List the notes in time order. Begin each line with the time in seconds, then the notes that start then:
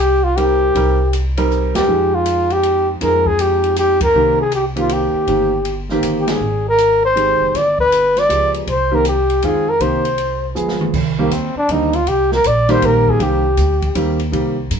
Already playing: C2
0.00 G4
0.24 F4
0.37 G3 C4 D#4 G4 A#4, ride
0.75 C2 G3 C4 D#4 A#4, kick, ride
1.13 hi-hat pedal, ride
1.37 G3 C4 D#4 A#4, ride
1.51 hi-hat pedal
1.75 E2 G4, snare, ride
1.87 F2 F3 G#3 C4 D#4
2.15 F4
2.26 hi-hat pedal, ride
2.50 G4, ride
2.63 ride
3.01 F2 F3 G#3 C4 D#4 A#4, kick, snare, ride
3.26 G#4, kick
3.39 G4, hi-hat pedal, ride
3.64 ride
3.76 G4, hi-hat pedal, ride
4.01 A#4, kick, ride
4.14 C2 D#3 A#3 C4 G4
4.41 G#4
4.52 G4, hi-hat pedal, ride
4.76 D#3 A#3 C4 G4, ride
4.80 F4
4.89 G4, ride
5.14 muted upright bass stroke
5.27 G1 D#3 A#3 C4 G4, kick, ride
5.65 ride
5.89 D#3 A#3 C4 G4, snare
6.03 G1, hi-hat pedal, ride
6.21 G4
6.27 G#4, snare, ride
6.40 G#1
6.69 A#4
6.78 hi-hat pedal, ride
7.05 C5
7.15 D#3 G#3 C4 G4, ride
7.40 F#1
7.54 G1 D5, kick, snare, ride
7.79 B4, kick
7.92 hi-hat pedal, ride
8.17 D5, snare, ride
8.29 C#2 F3 G#3 B3 G4, hi-hat pedal, ride
8.54 ride
8.67 C2 C5, kick, ride
8.91 D#3 A#3 C4 G4 A#4
9.05 G4, hi-hat pedal, ride
9.30 ride
9.42 F2 D#3 G#3 C4 F4 G#4, ride
9.69 A#4
9.80 C2 D#3 A#3 C4 G4 C5, kick, ride
10.05 ride
10.18 ride
10.55 G1 F3 G#3 B3 G#4, hi-hat pedal
10.68 snare
10.81 mid tom
10.94 C2, kick, crash
11.19 D#3 G3 A#3 C4 G4
11.31 D#2 C4, kick, hi-hat pedal, ride
11.55 D4, muted upright bass stroke
11.69 D2 D#3 G3 A#3 C4 D4 D#4, kick, ride
11.93 F4, ride
12.06 C2 G4, kick, ride
12.32 A#4, snare
12.44 A#1 D5, kick, hi-hat pedal, ride
12.69 D#3 G3 A#3 C4 G4 C5, snare, ride
12.82 A#1 A#4, kick, ride
13.07 G#4, kick
13.19 C2 D#3 G3 A#3 C4 G4, kick, ride
13.23 G4
13.57 D2, kick, hi-hat pedal, ride
13.82 kick, ride
13.95 D#2 D#3 G3 A#3 C4 G4, kick, ride
14.20 ride
14.32 C2 D#3 G3 A#3 C4 G4, kick, ride
14.70 G2, kick, hi-hat pedal, ride